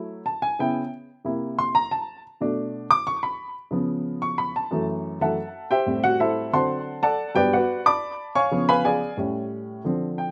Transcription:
Already playing: F#3 A3 E4
0.26 A5
0.42 G#5
0.59 C#3 B3 E4 G5
1.25 C3 A#3 E4
1.59 C6
1.75 A#5
1.91 A5
2.41 B2 A3 D4
2.91 D6
3.07 C#6
3.23 B5
3.71 C#3 F3 B3
4.22 C#6
4.38 B5
4.56 A5
4.71 F#2 E3 A3
5.21 F#2 E3 A3 A4 E5 F#5 A5
5.71 G4 C5 E5 G5
5.86 A2 G3 C4
6.04 F#4 F#5
6.20 E4 A4 C5 E5
6.53 D3 F#3 C4 C5 F#5 A5 C6
7.03 A4 D5 F#5 A5
7.35 G2 F#3 B3 G4 B4 D5 G5
7.53 F#4 B4 D5 F#5
7.86 D5 A5 B5 D6
8.35 C#5 F5 G#5 C#6
8.51 C#3 F3 B3
8.69 B4 F5 G#5 B5
8.85 G#4 D5 F5 G#5
9.17 A2 G3 C#4
9.84 D3 F3 C4
10.18 G5

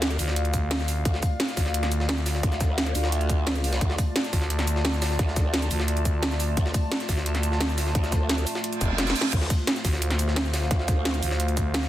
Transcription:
Already playing: D2 A3 F4 D5 F5
0.02 snare, closed hi-hat
0.11 closed hi-hat, shaker
0.19 D2, closed hi-hat, open hi-hat, shaker
0.28 snare
0.36 closed hi-hat
0.45 closed hi-hat
0.54 kick, closed hi-hat, shaker
0.71 snare, closed hi-hat
0.79 snare, shaker
0.88 closed hi-hat, open hi-hat, shaker
1.05 D2, kick, closed hi-hat
1.14 snare
1.23 kick, closed hi-hat, open hi-hat, shaker
1.40 snare, closed hi-hat
1.48 snare, closed hi-hat, shaker
1.57 D2, kick, snare, closed hi-hat, open hi-hat, shaker
1.66 snare
1.74 closed hi-hat
1.83 snare, closed hi-hat
1.92 closed hi-hat, shaker
2.00 snare
2.09 snare, closed hi-hat
2.17 shaker
2.26 snare, closed hi-hat, open hi-hat, shaker
2.35 snare
2.43 D2, kick, closed hi-hat
2.52 snare, shaker
2.61 kick, snare, closed hi-hat, shaker
2.78 snare, closed hi-hat
2.86 snare, closed hi-hat, shaker
2.95 D2, closed hi-hat, open hi-hat, shaker
3.04 snare
3.12 closed hi-hat
3.21 closed hi-hat
3.29 kick, closed hi-hat, shaker
3.47 snare, closed hi-hat
3.55 C#2, closed hi-hat, shaker
3.64 closed hi-hat, open hi-hat, shaker
3.73 snare, closed hi-hat
3.81 D2 A5, kick, closed hi-hat
3.90 snare
3.98 kick, closed hi-hat, open hi-hat, shaker
4.16 snare, closed hi-hat
4.24 snare, closed hi-hat, shaker
4.33 D2, kick, snare, closed hi-hat, open hi-hat, shaker
4.42 snare
4.50 closed hi-hat
4.59 snare, closed hi-hat
4.67 closed hi-hat, shaker
4.76 snare
4.85 snare, closed hi-hat
4.93 shaker
5.02 snare, closed hi-hat, open hi-hat, shaker
5.11 snare
5.19 D2, kick, snare, closed hi-hat
5.28 snare
5.36 kick, snare, closed hi-hat, shaker
5.54 snare, closed hi-hat
5.62 closed hi-hat, shaker
5.71 D2, closed hi-hat, open hi-hat, shaker
5.80 snare
5.88 closed hi-hat
5.97 closed hi-hat
6.05 kick, closed hi-hat, shaker
6.23 snare, closed hi-hat
6.31 snare, shaker
6.40 closed hi-hat, open hi-hat, shaker
6.57 D2, kick, closed hi-hat
6.66 snare
6.74 kick, closed hi-hat, open hi-hat, shaker
6.92 snare, closed hi-hat
7.00 snare, closed hi-hat, shaker
7.09 D2, kick, snare, closed hi-hat, open hi-hat, shaker
7.17 snare
7.26 closed hi-hat
7.35 snare, closed hi-hat
7.43 closed hi-hat, shaker
7.52 snare
7.61 snare, closed hi-hat
7.69 shaker
7.78 snare, closed hi-hat, open hi-hat, shaker
7.86 snare
7.95 D2, kick, closed hi-hat
8.04 snare, shaker
8.12 kick, snare, closed hi-hat, shaker
8.29 snare, closed hi-hat
8.38 closed hi-hat, shaker
8.47 closed hi-hat, open hi-hat, shaker
8.55 snare
8.64 closed hi-hat, reverse cymbal
8.73 closed hi-hat, shaker
8.81 F1, kick, closed hi-hat, shaker
8.98 snare, closed hi-hat
9.07 snare, closed hi-hat, shaker
9.10 snare
9.16 closed hi-hat, open hi-hat, shaker
9.21 snare
9.33 D2 C5 F5, kick, closed hi-hat, crash
9.42 snare
9.50 kick, closed hi-hat, open hi-hat, shaker
9.67 snare, closed hi-hat
9.76 snare, closed hi-hat, shaker
9.85 D2, kick, snare, closed hi-hat, open hi-hat, shaker
9.93 snare
10.02 closed hi-hat
10.11 snare, closed hi-hat
10.19 closed hi-hat, shaker
10.28 snare
10.36 snare, closed hi-hat
10.45 shaker
10.54 snare, closed hi-hat, open hi-hat, shaker
10.62 snare
10.71 D2, kick, snare, closed hi-hat
10.79 snare
10.88 kick, snare, closed hi-hat, shaker
11.05 snare, closed hi-hat
11.14 closed hi-hat, shaker
11.23 D2, closed hi-hat, open hi-hat, shaker
11.31 snare
11.40 closed hi-hat
11.48 closed hi-hat
11.57 kick, closed hi-hat, shaker
11.74 snare, closed hi-hat
11.83 snare, shaker

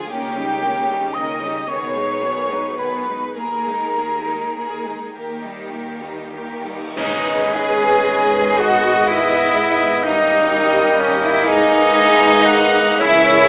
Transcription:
Already playing: F3 G#3 F4 G#4
0.10 C#2 C#3 D#3 A#3 C#4 G4 A#4 G5
0.37 G3 C#4 D#4 G4
0.63 D#3 A#3 C#4 A#4
0.89 G3 C#4 D#4 G4
1.14 D#3 A#3 C#4 A#4 D#5 D#6
1.42 G3 C#4 D#4 G4
1.67 B1 B2 D#3 B3 G#4 C#5 C#6
1.96 G#3 D#4 B4
2.23 D#3 B3 G#4
2.49 G#3 D#4 B4
2.78 D#3 B3 G#4 B4 B5
3.07 G#3 D#4 B4
3.37 D#2 D#3 A#3 G#4 A#4 A#5
3.67 G#3 D#4 G#4
3.98 A#3 G#4 A#4
4.27 G#3 D#4 G#4
4.57 A#3 G#4 A#4
4.85 G#3 D#4 G#4
5.14 D#2 D#3 A#3 G4 A#4
5.43 G3 D#4 G4
5.72 A#3 G4 A#4
6.02 G3 D#4 G4
6.34 A#3 G4 A#4
6.65 G3 D#4 G4
6.96 G#1 D#3 G#3 B3 C#4 D#4 B4 D#5 G#5, concert bass drum, crash
7.54 G#4 G#5
8.58 B3 F#4 D#5 F#5
9.07 E4 E5
10.03 D#3 G3 A#3 C#4 D#4 A#4 D#5 G5
11.00 C#4 C#5
11.23 E4 E5
11.45 D#3 G#3 B3 D#4 G#4 B4 D#5 G#5
11.94 E5 G#5
12.46 F#5
12.99 C#2 C#3 E3 A#3 C#4 E4 A#4 C#5 E5

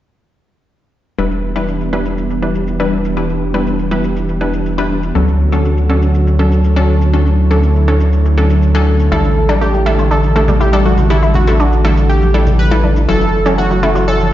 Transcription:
1.18 E1 E3 G3 B3 D4 E4 G4 B4, shaker
1.31 shaker
1.56 G3 D4 E4 B4, shaker
1.68 shaker
1.81 shaker
1.93 G3 D4 E4 B4
2.05 shaker
2.18 shaker
2.30 shaker
2.42 G3 D4 E4 B4
2.55 shaker
2.67 shaker
2.80 G3 D4 E4 B4, shaker
3.05 shaker
3.17 G3 D4 E4 B4, shaker
3.29 shaker
3.54 G3 D4 E4 B4, shaker
3.67 shaker
3.79 shaker
3.91 G3 D4 E4 B4
4.04 shaker
4.16 shaker
4.29 shaker
4.41 G3 D4 E4 B4
4.53 shaker
4.66 shaker
4.78 G3 D4 E4 B4, shaker
5.03 shaker
5.15 D2 D3 F#3 A3 C#4 D4 F#4 A4 C#5, shaker
5.28 shaker
5.52 F#3 C#4 D4 A4, shaker
5.65 shaker
5.77 shaker
5.90 F#3 C#4 D4 A4
6.02 shaker
6.14 shaker
6.27 shaker
6.39 F#3 C#4 D4 A4
6.52 shaker
6.64 shaker
6.76 F#3 C#4 D4 A4, shaker
7.01 shaker
7.13 F#3 C#4 D4 E4 A4, shaker
7.26 shaker
7.51 F#3 C#4 D4 A4, shaker
7.63 shaker
7.76 shaker
7.88 F#3 C#4 D4 A4
8.00 shaker
8.13 shaker
8.25 shaker
8.38 F#3 C#4 D4 A4
8.50 shaker
8.62 shaker
8.75 F#3 C#4 D4 A4, shaker
9.00 shaker
9.12 A1 E3 G3 D4 E4 A4, shaker
9.24 shaker
9.49 G3 D4 E4 A4, shaker
9.61 A3 G4, shaker
9.74 G3, shaker
9.86 G3 D4 E4 A4
9.99 G3, high woodblock, shaker
10.11 D4 A4, shaker
10.23 high conga, shaker
10.36 G3 A3 D4 E4 A4
10.48 G3, low conga, shaker
10.60 E4 G4, shaker
10.73 G3 D4 E4 A4, shaker
10.85 A3 F#4, high conga
10.98 low conga, shaker
11.10 G3 D4 E4 A4, shaker
11.23 E4, shaker
11.34 F#4, low conga
11.47 G3 D4 E4 A4, high woodblock, shaker
11.60 D4, shaker
11.72 shaker
11.85 G3 A3 D4 E4 A4
11.97 shaker
12.10 G4, shaker
12.22 high conga, shaker
12.34 G3 D4 E4 A4
12.47 low conga, shaker
12.59 B4, shaker
12.71 G3 D4 E4 A4, shaker
12.83 D4, high conga
12.96 shaker
13.08 F#1 C#3 F#3 A3 C#4 E4 A4, shaker
13.21 shaker
13.46 F#3 C#4 E4 A4, shaker
13.58 A3 F#4, shaker
13.71 F#3, shaker
13.83 F#3 C#4 E4 A4
13.95 F#3, high woodblock, shaker
14.08 C#4 A4, shaker
14.20 high conga, shaker

